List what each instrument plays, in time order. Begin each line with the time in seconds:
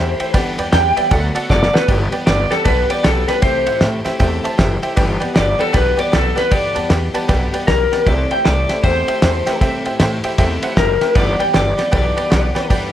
Already playing: upright bass E2, steel-string acoustic guitar E3 A3 E4, clean electric guitar C5, honky-tonk piano G5
0.00 steel-string acoustic guitar G4
0.20 steel-string acoustic guitar A3 E4 G4, honky-tonk piano C5 E5 G5, muted upright bass stroke, ride
0.34 upright bass G1, steel-string acoustic guitar G2 D3 E3 G3 B3 G4, honky-tonk piano B4 D5 G5, kick, snare, ride
0.58 upright bass E2, steel-string acoustic guitar E3 G3 B3 G4, honky-tonk piano B4 D5 G5, ride
0.72 upright bass E2, steel-string acoustic guitar E3 G3 B3 G4, honky-tonk piano B4 D5 G5, clean electric guitar G5, snare, ride
0.96 steel-string acoustic guitar E3 G3 B3 G4, honky-tonk piano B4 D5 E5, muted upright bass stroke, ride
1.11 upright bass D2, steel-string acoustic guitar D3 F#3 A3 B3 F#4, honky-tonk piano A4 D5 F#5, kick, ride
1.35 steel-string acoustic guitar A3 B3 F#4, honky-tonk piano A4 D5 F#5, muted upright bass stroke, ride
1.49 upright bass F#1, steel-string acoustic guitar F#3 A3 B3 F#4, honky-tonk piano A4 D5 F#5, clean electric guitar D5, kick, snare
1.63 snare
1.73 steel-string acoustic guitar A3 B3 F#4, honky-tonk piano A4 D5 F#5, clean electric guitar B4, muted upright bass stroke, snare
1.88 upright bass G1, steel-string acoustic guitar G2 D3 E3 G3 B3 G4, honky-tonk piano B4 D5 G5, kick, ride
2.11 steel-string acoustic guitar E3 G3 B3 G4, honky-tonk piano B4 D5 G5, muted upright bass stroke, ride
2.26 upright bass G1, steel-string acoustic guitar E3 G3 B3 G4, honky-tonk piano B4 D5 G5, clean electric guitar D5, snare, ride
2.50 steel-string acoustic guitar E3 G3 B3 G4, clean electric guitar A4, honky-tonk piano B4 D5 G5, muted upright bass stroke, snare, ride
2.65 upright bass B1, steel-string acoustic guitar G2 D3 E3 G3 B3 G4, honky-tonk piano B4 D5 A5, clean electric guitar B4, kick, snare, ride
2.89 steel-string acoustic guitar E3 G3 B3 G4, honky-tonk piano B4 D5 G5, clean electric guitar D5, muted upright bass stroke, ride
3.03 upright bass B1, steel-string acoustic guitar E3 G3 B3, clean electric guitar A4, honky-tonk piano B4 D5 G5, snare, ride
3.07 steel-string acoustic guitar G4
3.28 steel-string acoustic guitar E3 G3 B3 G4, honky-tonk piano B4 D5 G5, clean electric guitar B4, muted upright bass stroke, snare, ride
3.42 upright bass C2, steel-string acoustic guitar C3 E3 A3 E4 G4, honky-tonk piano C5 E5 G5, clean electric guitar C5, kick, snare, ride
3.66 upright bass A2, steel-string acoustic guitar A3 E4 G4, honky-tonk piano C5 E5 F#5, ride
3.80 upright bass A2, steel-string acoustic guitar E3 A3 E4, honky-tonk piano C5 E5 G5, snare, ride
3.85 steel-string acoustic guitar G4
4.05 steel-string acoustic guitar E4 G4, honky-tonk piano C5 E5 G5, muted upright bass stroke, snare, ride
4.09 steel-string acoustic guitar A3
4.19 upright bass E2, steel-string acoustic guitar C3 E3 A3 E4 G4, honky-tonk piano C5 E5 G5, kick, snare, ride
4.44 steel-string acoustic guitar E4 G4, honky-tonk piano C5 E5 A5, muted upright bass stroke, ride
4.48 steel-string acoustic guitar A3
4.57 upright bass F#1, steel-string acoustic guitar E3 A3 E4, honky-tonk piano C5 E5 G5, kick, snare, ride
4.62 steel-string acoustic guitar G4
4.82 steel-string acoustic guitar A3 E4 G4, honky-tonk piano C5 E5 G5, muted upright bass stroke, ride
4.96 upright bass G1, steel-string acoustic guitar G2 D3 E3 G3 B3 G4, honky-tonk piano B4 D5 G5, kick, snare, ride
5.20 steel-string acoustic guitar B3 G4, honky-tonk piano B4 D5 G5, muted upright bass stroke, ride
5.24 steel-string acoustic guitar E3 G3
5.34 upright bass G1, steel-string acoustic guitar E3 G3 B3, honky-tonk piano B4 D5 G5, clean electric guitar D5, snare, ride
5.39 steel-string acoustic guitar G4
5.59 steel-string acoustic guitar E3 G3 B3 G4, clean electric guitar A4, honky-tonk piano B4 D5 G5, muted upright bass stroke, ride
5.73 upright bass B1, steel-string acoustic guitar G2 D3 E3 G3 B3, honky-tonk piano B4 D5 G5, clean electric guitar B4, kick, snare, ride
5.77 steel-string acoustic guitar G4
5.97 steel-string acoustic guitar G3 B3 G4, honky-tonk piano B4 D5 G5, clean electric guitar D5, muted upright bass stroke, ride
6.01 steel-string acoustic guitar E3
6.12 upright bass B1, steel-string acoustic guitar E3 G3 B3 G4, clean electric guitar A4, honky-tonk piano B4 D5 G5, snare, ride
6.35 steel-string acoustic guitar G3 B3 G4, honky-tonk piano B4 D5 G5, clean electric guitar B4, muted upright bass stroke, snare, ride
6.40 steel-string acoustic guitar E3
6.51 upright bass D2, steel-string acoustic guitar G2 D3 E3 G3 B3 G4, honky-tonk piano B4 D5 G5, clean electric guitar D5, kick, ride
6.74 upright bass E2, steel-string acoustic guitar G3 B3 G4, honky-tonk piano B4 D5 A5, ride
6.79 steel-string acoustic guitar E3
6.89 upright bass E2, steel-string acoustic guitar E3 G3 B3 G4, honky-tonk piano B4 D5 G5, snare, ride
7.14 steel-string acoustic guitar E3 G3 B3 G4, honky-tonk piano B4 D5 A5, muted upright bass stroke, ride
7.28 upright bass B1, steel-string acoustic guitar G2 D3 E3 G3 B3 G4, honky-tonk piano B4 D5 G5, kick, snare, ride
7.52 steel-string acoustic guitar E3 G3 B3 G4, honky-tonk piano B4 D5 G5, muted upright bass stroke, ride
7.67 upright bass B1, steel-string acoustic guitar E3 G3 B3 G4, clean electric guitar A#4, honky-tonk piano B4 D5 G5, kick, snare, ride
7.92 steel-string acoustic guitar E3 G3 B3 G4, honky-tonk piano B4 D5 G5, muted upright bass stroke, snare, ride
8.06 upright bass C2, steel-string acoustic guitar C3 E3 A3 E4 G4, honky-tonk piano C5 E5 G5, clean electric guitar D5, kick, ride
8.30 steel-string acoustic guitar A3 E4 G4, honky-tonk piano C5 E5 G5, clean electric guitar G5, muted upright bass stroke, ride
8.44 upright bass C2, steel-string acoustic guitar E3 A3 E4 G4, honky-tonk piano C5 E5 G5, clean electric guitar D5, snare, ride
8.69 steel-string acoustic guitar A3 E4 G4, honky-tonk piano C5 E5 G5, muted upright bass stroke, snare, ride
8.83 upright bass E2, steel-string acoustic guitar C3 E3 A3 E4 G4, clean electric guitar C5, honky-tonk piano C5 E5 G5, kick, ride
9.07 steel-string acoustic guitar A3 E4 G4, honky-tonk piano C5 E5 G5, muted upright bass stroke, ride
9.22 upright bass E2, steel-string acoustic guitar E3 A3 E4, honky-tonk piano C5 E5 G5, snare, ride
9.26 steel-string acoustic guitar G4
9.46 steel-string acoustic guitar A3 E4 G4, honky-tonk piano C5 E5 G5, muted upright bass stroke, snare, ride
9.61 upright bass G2, steel-string acoustic guitar C3 E3 A3 E4 G4, honky-tonk piano C5 E5 G5, kick, snare, ride
9.85 upright bass A2, steel-string acoustic guitar A3 E4 G4, honky-tonk piano C5 E5 G5, ride
10.00 upright bass A2, steel-string acoustic guitar E3 A3 E4 G4, honky-tonk piano C5 E5 G5, snare, ride
10.24 steel-string acoustic guitar A3 E4 G4, honky-tonk piano C5 E5 G5, muted upright bass stroke, ride
10.38 upright bass E2, steel-string acoustic guitar C3 E3 A3 E4 G4, honky-tonk piano C5 E5 G5, kick, snare, ride
10.62 steel-string acoustic guitar A3 E4 G4, honky-tonk piano C5 E5 F#5, muted upright bass stroke, ride
10.76 upright bass F#1, steel-string acoustic guitar E3 A3 E4 G4, clean electric guitar A#4, honky-tonk piano C5 E5 G5, kick, snare, ride
11.01 steel-string acoustic guitar E4 G4, honky-tonk piano C5 E5 G5, muted upright bass stroke, snare, ride
11.05 steel-string acoustic guitar A3
11.15 upright bass G1, steel-string acoustic guitar G2 D3 E3 G3 B3 G4, honky-tonk piano B4 D5 G5, clean electric guitar D5, kick, ride
11.39 steel-string acoustic guitar E3 G3 B3 G4, honky-tonk piano B4 D5 G5, clean electric guitar G5, muted upright bass stroke, ride
11.53 upright bass G1, steel-string acoustic guitar E3 G3 B3 G4, honky-tonk piano B4 D5 G5, clean electric guitar D5, snare, ride
11.78 steel-string acoustic guitar G3 B3 G4, honky-tonk piano B4 D5 G5, muted upright bass stroke, snare, ride
11.82 steel-string acoustic guitar E3
11.92 upright bass B1, steel-string acoustic guitar G2 D3 E3 G3 B3 G4, honky-tonk piano B4 D5 G5, clean electric guitar D5, kick, ride
12.17 steel-string acoustic guitar G3 B3 G4, honky-tonk piano B4 D5 G5, muted upright bass stroke, ride
12.21 steel-string acoustic guitar E3
12.30 upright bass B1, steel-string acoustic guitar E3 G3 B3, honky-tonk piano B4 D5 F#5, snare, ride
12.35 steel-string acoustic guitar G4
12.55 steel-string acoustic guitar G3 B3 G4, honky-tonk piano B4 D5 G5, muted upright bass stroke, snare, ride
12.59 steel-string acoustic guitar E3
12.70 upright bass D2, steel-string acoustic guitar G2 D3 E3 G3 B3 G4, honky-tonk piano B4 D5 G5, kick, ride